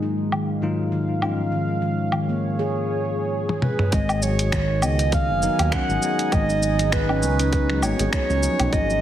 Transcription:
Already playing: G#2 F#3 G#3 A#3 D#4 F4
0.03 D#4
0.22 F5
0.32 D#3, low woodblock
0.62 G#2 D#3 F#3 A#3 D#4 F4
0.92 D#3
1.20 G#2 F3 G#3 C#4 D#4, low woodblock
1.24 F4
1.52 D#3
1.81 D#3 C#5
2.12 D#3 G#4, low woodblock
2.29 A#3
2.59 G#4
3.49 high tom
3.62 B4, mid tom
3.79 mid tom
3.92 G#1 G#3 D#5, kick, closed hi-hat, shaker
4.09 low woodblock, shaker
4.22 F#3 C#5, shaker
4.38 D#4, closed hi-hat, shaker
4.52 D#3 G#5, finger snap, kick, closed hi-hat, shaker
4.67 D#5
4.82 C#2 B3 D#5, low woodblock, shaker
4.99 closed hi-hat, shaker
5.12 D#3 F5, kick, closed hi-hat, shaker
5.29 F#1
5.42 F#3 B3 D#4 A#4, shaker
5.59 D#2, closed hi-hat, low woodblock, shaker
5.72 C#4 F#5, finger snap, kick, closed hi-hat, shaker
5.89 G#1, shaker
6.01 F#3 G#3 B3, shaker
6.05 D#4
6.19 closed hi-hat, shaker
6.32 G#1 D#3 D#5, kick, closed hi-hat, low woodblock, shaker
6.49 D#4, shaker
6.62 shaker
6.79 G#3, closed hi-hat, shaker
6.92 B4, finger snap, kick, closed hi-hat, shaker
7.09 C#4, low woodblock
7.22 C#2, shaker
7.39 C#4, closed hi-hat, shaker
7.53 kick, closed hi-hat, shaker
7.70 F#3, finger snap
7.82 G#1 F#3 A#3 B3 D#4 C#5, low woodblock, shaker
7.99 G#1 G#4, closed hi-hat, shaker
8.13 C#5, finger snap, kick, closed hi-hat, shaker
8.29 C#2 C#4, shaker
8.41 F3 F#3 A#3 D#4, shaker
8.60 B1 C#4, closed hi-hat, low woodblock, shaker
8.73 G#1 G#3 D#5, kick, closed hi-hat, shaker
8.90 shaker

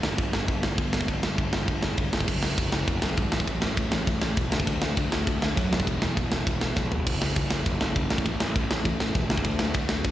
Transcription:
0.02 G1, snare
0.18 G1, kick, crash
0.33 snare
0.48 G1, kick, crash
0.63 snare
0.78 G1, kick, crash
0.93 snare
1.01 kick
1.08 G1, kick, crash
1.22 G1, snare
1.38 G1, kick, crash
1.52 G1, snare
1.68 G1, kick, crash
1.82 G1, snare
1.97 G1, kick, crash
2.13 G1, snare
2.20 kick
2.28 F#1, kick, crash
2.43 snare
2.58 F#1, kick, ride
2.72 snare
2.88 F#1, kick, ride
3.02 F#1, snare
3.17 G#1, kick, ride
3.32 A1, snare
3.40 kick
3.47 A1, kick, ride
3.62 A1, snare
3.77 A1, kick, ride
3.92 A1, snare
4.07 A1, kick, ride
4.22 snare
4.37 E1, kick, ride
4.51 D2, snare
4.60 kick
4.67 D2, kick, ride
4.82 snare
4.97 D2, kick, ride
5.12 snare
5.27 D2, kick, ride
5.42 D2, snare
5.57 F#2, kick, ride
5.72 E1, snare
5.80 kick
5.87 E1, kick, ride
6.02 E1, snare
6.17 E1, kick, ride
6.32 E1, snare
6.47 E1, kick, ride
6.61 snare
6.76 B1, kick, snare
6.92 E1, floor tom
7.07 F#1, kick, crash
7.22 snare
7.36 F#1, kick, ride
7.50 snare
7.66 F#1, kick, ride
7.81 F#1, snare
7.96 F#1, kick, ride
8.10 A1, snare
8.18 kick
8.26 A1, kick, ride
8.40 A1, snare
8.56 A1, kick, ride
8.71 A1, snare
8.85 A1, kick, ride
9.00 snare
9.15 E1, kick, ride
9.29 D2, snare
9.37 kick
9.44 D2, kick, ride
9.59 snare
9.74 D2, kick, ride
9.89 snare
10.04 D2, kick, ride

